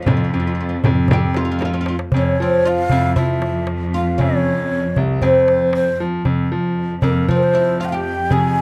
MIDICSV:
0, 0, Header, 1, 7, 480
1, 0, Start_track
1, 0, Tempo, 514580
1, 76, Time_signature, 4, 2, 24, 8
1, 8036, End_track
2, 0, Start_track
2, 0, Title_t, "Ney"
2, 0, Program_c, 0, 77
2, 1998, Note_on_c, 0, 73, 74
2, 2496, Note_on_c, 0, 77, 87
2, 2510, Note_off_c, 0, 73, 0
2, 2948, Note_off_c, 0, 77, 0
2, 2954, Note_on_c, 0, 76, 65
2, 3402, Note_off_c, 0, 76, 0
2, 3686, Note_on_c, 0, 77, 82
2, 3931, Note_on_c, 0, 73, 82
2, 3945, Note_off_c, 0, 77, 0
2, 4645, Note_off_c, 0, 73, 0
2, 4877, Note_on_c, 0, 72, 75
2, 5324, Note_off_c, 0, 72, 0
2, 5363, Note_on_c, 0, 72, 82
2, 5584, Note_off_c, 0, 72, 0
2, 6554, Note_on_c, 0, 70, 68
2, 6801, Note_on_c, 0, 72, 70
2, 6815, Note_off_c, 0, 70, 0
2, 6875, Note_on_c, 0, 70, 54
2, 6889, Note_off_c, 0, 72, 0
2, 6930, Note_on_c, 0, 72, 78
2, 6944, Note_off_c, 0, 70, 0
2, 7279, Note_off_c, 0, 72, 0
2, 7289, Note_on_c, 0, 77, 79
2, 7325, Note_on_c, 0, 79, 66
2, 7339, Note_off_c, 0, 77, 0
2, 7360, Note_on_c, 0, 77, 85
2, 7374, Note_off_c, 0, 79, 0
2, 7413, Note_on_c, 0, 79, 86
2, 7427, Note_off_c, 0, 77, 0
2, 7769, Note_on_c, 0, 80, 96
2, 7783, Note_off_c, 0, 79, 0
2, 8036, Note_off_c, 0, 80, 0
2, 8036, End_track
3, 0, Start_track
3, 0, Title_t, "Oud"
3, 0, Program_c, 1, 24
3, 22, Note_on_c, 1, 65, 61
3, 66, Note_off_c, 1, 65, 0
3, 96, Note_on_c, 1, 65, 53
3, 138, Note_off_c, 1, 65, 0
3, 157, Note_on_c, 1, 65, 55
3, 204, Note_off_c, 1, 65, 0
3, 226, Note_on_c, 1, 65, 46
3, 273, Note_off_c, 1, 65, 0
3, 314, Note_on_c, 1, 65, 57
3, 353, Note_off_c, 1, 65, 0
3, 369, Note_on_c, 1, 65, 52
3, 415, Note_off_c, 1, 65, 0
3, 440, Note_on_c, 1, 65, 63
3, 486, Note_off_c, 1, 65, 0
3, 511, Note_on_c, 1, 65, 48
3, 554, Note_off_c, 1, 65, 0
3, 565, Note_on_c, 1, 65, 57
3, 618, Note_off_c, 1, 65, 0
3, 643, Note_on_c, 1, 65, 54
3, 692, Note_off_c, 1, 65, 0
3, 1054, Note_on_c, 1, 67, 103
3, 1271, Note_off_c, 1, 67, 0
3, 1275, Note_on_c, 1, 65, 94
3, 1341, Note_off_c, 1, 65, 0
3, 1350, Note_on_c, 1, 65, 76
3, 1403, Note_off_c, 1, 65, 0
3, 1414, Note_on_c, 1, 65, 77
3, 1469, Note_off_c, 1, 65, 0
3, 1480, Note_on_c, 1, 65, 72
3, 1529, Note_off_c, 1, 65, 0
3, 1540, Note_on_c, 1, 65, 88
3, 1608, Note_off_c, 1, 65, 0
3, 1619, Note_on_c, 1, 65, 74
3, 1676, Note_off_c, 1, 65, 0
3, 1687, Note_on_c, 1, 65, 83
3, 1746, Note_off_c, 1, 65, 0
3, 1757, Note_on_c, 1, 65, 69
3, 1827, Note_off_c, 1, 65, 0
3, 2020, Note_on_c, 1, 61, 86
3, 2255, Note_off_c, 1, 61, 0
3, 2259, Note_on_c, 1, 60, 85
3, 2471, Note_off_c, 1, 60, 0
3, 2475, Note_on_c, 1, 65, 100
3, 2722, Note_off_c, 1, 65, 0
3, 2725, Note_on_c, 1, 64, 92
3, 2936, Note_off_c, 1, 64, 0
3, 2948, Note_on_c, 1, 64, 83
3, 3399, Note_off_c, 1, 64, 0
3, 3677, Note_on_c, 1, 65, 95
3, 3899, Note_on_c, 1, 61, 91
3, 3925, Note_off_c, 1, 65, 0
3, 4592, Note_off_c, 1, 61, 0
3, 4872, Note_on_c, 1, 60, 94
3, 5559, Note_off_c, 1, 60, 0
3, 6563, Note_on_c, 1, 58, 79
3, 6808, Note_off_c, 1, 58, 0
3, 6816, Note_on_c, 1, 60, 85
3, 7035, Note_off_c, 1, 60, 0
3, 7039, Note_on_c, 1, 64, 96
3, 7277, Note_off_c, 1, 64, 0
3, 7281, Note_on_c, 1, 65, 96
3, 7386, Note_off_c, 1, 65, 0
3, 7390, Note_on_c, 1, 67, 88
3, 7752, Note_off_c, 1, 67, 0
3, 7756, Note_on_c, 1, 68, 90
3, 8036, Note_off_c, 1, 68, 0
3, 8036, End_track
4, 0, Start_track
4, 0, Title_t, "Cello section"
4, 0, Program_c, 2, 48
4, 0, Note_on_c, 2, 41, 79
4, 1989, Note_off_c, 2, 41, 0
4, 2001, Note_on_c, 2, 41, 76
4, 5816, Note_off_c, 2, 41, 0
4, 5827, Note_on_c, 2, 41, 72
4, 8036, Note_off_c, 2, 41, 0
4, 8036, End_track
5, 0, Start_track
5, 0, Title_t, "Grand piano"
5, 0, Program_c, 3, 0
5, 63, Note_on_c, 3, 41, 96
5, 257, Note_off_c, 3, 41, 0
5, 313, Note_on_c, 3, 41, 86
5, 693, Note_off_c, 3, 41, 0
5, 798, Note_on_c, 3, 41, 104
5, 987, Note_off_c, 3, 41, 0
5, 1033, Note_on_c, 3, 41, 109
5, 1792, Note_off_c, 3, 41, 0
5, 1997, Note_on_c, 3, 41, 92
5, 2186, Note_off_c, 3, 41, 0
5, 2239, Note_on_c, 3, 53, 83
5, 2617, Note_off_c, 3, 53, 0
5, 2717, Note_on_c, 3, 41, 88
5, 2907, Note_off_c, 3, 41, 0
5, 2962, Note_on_c, 3, 53, 87
5, 3719, Note_off_c, 3, 53, 0
5, 3924, Note_on_c, 3, 41, 84
5, 4490, Note_off_c, 3, 41, 0
5, 4639, Note_on_c, 3, 36, 89
5, 4828, Note_off_c, 3, 36, 0
5, 4875, Note_on_c, 3, 41, 93
5, 5445, Note_off_c, 3, 41, 0
5, 5600, Note_on_c, 3, 53, 86
5, 5789, Note_off_c, 3, 53, 0
5, 5833, Note_on_c, 3, 41, 88
5, 6025, Note_off_c, 3, 41, 0
5, 6079, Note_on_c, 3, 53, 86
5, 6458, Note_off_c, 3, 53, 0
5, 6556, Note_on_c, 3, 41, 102
5, 6746, Note_off_c, 3, 41, 0
5, 6794, Note_on_c, 3, 53, 94
5, 7554, Note_off_c, 3, 53, 0
5, 7746, Note_on_c, 3, 41, 84
5, 8036, Note_off_c, 3, 41, 0
5, 8036, End_track
6, 0, Start_track
6, 0, Title_t, "Darbuka"
6, 59, Note_on_c, 9, 64, 96
6, 153, Note_off_c, 9, 64, 0
6, 424, Note_on_c, 9, 62, 29
6, 518, Note_off_c, 9, 62, 0
6, 654, Note_on_c, 9, 62, 33
6, 747, Note_off_c, 9, 62, 0
6, 781, Note_on_c, 9, 64, 92
6, 874, Note_off_c, 9, 64, 0
6, 894, Note_on_c, 9, 62, 30
6, 988, Note_off_c, 9, 62, 0
6, 1008, Note_on_c, 9, 64, 95
6, 1101, Note_off_c, 9, 64, 0
6, 1134, Note_on_c, 9, 62, 30
6, 1228, Note_off_c, 9, 62, 0
6, 1254, Note_on_c, 9, 63, 66
6, 1347, Note_off_c, 9, 63, 0
6, 1501, Note_on_c, 9, 63, 63
6, 1594, Note_off_c, 9, 63, 0
6, 1622, Note_on_c, 9, 62, 66
6, 1716, Note_off_c, 9, 62, 0
6, 1735, Note_on_c, 9, 63, 76
6, 1828, Note_off_c, 9, 63, 0
6, 1857, Note_on_c, 9, 62, 91
6, 1950, Note_off_c, 9, 62, 0
6, 1975, Note_on_c, 9, 64, 96
6, 2068, Note_off_c, 9, 64, 0
6, 2590, Note_on_c, 9, 62, 26
6, 2683, Note_off_c, 9, 62, 0
6, 2701, Note_on_c, 9, 64, 98
6, 2794, Note_off_c, 9, 64, 0
6, 2831, Note_on_c, 9, 62, 27
6, 2924, Note_off_c, 9, 62, 0
6, 2950, Note_on_c, 9, 64, 104
6, 3043, Note_off_c, 9, 64, 0
6, 3189, Note_on_c, 9, 63, 77
6, 3282, Note_off_c, 9, 63, 0
6, 3422, Note_on_c, 9, 63, 74
6, 3516, Note_off_c, 9, 63, 0
6, 3548, Note_on_c, 9, 62, 22
6, 3641, Note_off_c, 9, 62, 0
6, 3670, Note_on_c, 9, 62, 24
6, 3764, Note_off_c, 9, 62, 0
6, 3909, Note_on_c, 9, 64, 91
6, 4002, Note_off_c, 9, 64, 0
6, 4271, Note_on_c, 9, 62, 25
6, 4364, Note_off_c, 9, 62, 0
6, 4512, Note_on_c, 9, 62, 27
6, 4605, Note_off_c, 9, 62, 0
6, 4630, Note_on_c, 9, 64, 84
6, 4724, Note_off_c, 9, 64, 0
6, 4750, Note_on_c, 9, 62, 27
6, 4843, Note_off_c, 9, 62, 0
6, 4866, Note_on_c, 9, 64, 84
6, 4959, Note_off_c, 9, 64, 0
6, 5112, Note_on_c, 9, 63, 75
6, 5205, Note_off_c, 9, 63, 0
6, 5345, Note_on_c, 9, 63, 85
6, 5438, Note_off_c, 9, 63, 0
6, 5593, Note_on_c, 9, 62, 25
6, 5686, Note_off_c, 9, 62, 0
6, 5832, Note_on_c, 9, 64, 82
6, 5925, Note_off_c, 9, 64, 0
6, 6193, Note_on_c, 9, 62, 25
6, 6286, Note_off_c, 9, 62, 0
6, 6435, Note_on_c, 9, 62, 28
6, 6529, Note_off_c, 9, 62, 0
6, 6549, Note_on_c, 9, 64, 93
6, 6642, Note_off_c, 9, 64, 0
6, 6672, Note_on_c, 9, 62, 26
6, 6765, Note_off_c, 9, 62, 0
6, 6797, Note_on_c, 9, 64, 99
6, 6891, Note_off_c, 9, 64, 0
6, 7032, Note_on_c, 9, 63, 65
6, 7125, Note_off_c, 9, 63, 0
6, 7276, Note_on_c, 9, 63, 60
6, 7369, Note_off_c, 9, 63, 0
6, 7392, Note_on_c, 9, 62, 23
6, 7485, Note_off_c, 9, 62, 0
6, 7508, Note_on_c, 9, 62, 25
6, 7602, Note_off_c, 9, 62, 0
6, 7748, Note_on_c, 9, 64, 88
6, 7841, Note_off_c, 9, 64, 0
6, 8036, End_track
7, 0, Start_track
7, 0, Title_t, "Frame drum"
7, 70, Note_on_c, 9, 64, 96
7, 163, Note_off_c, 9, 64, 0
7, 789, Note_on_c, 9, 64, 94
7, 882, Note_off_c, 9, 64, 0
7, 1035, Note_on_c, 9, 64, 105
7, 1129, Note_off_c, 9, 64, 0
7, 1274, Note_on_c, 9, 64, 78
7, 1367, Note_off_c, 9, 64, 0
7, 1511, Note_on_c, 9, 64, 73
7, 1604, Note_off_c, 9, 64, 0
7, 8036, End_track
0, 0, End_of_file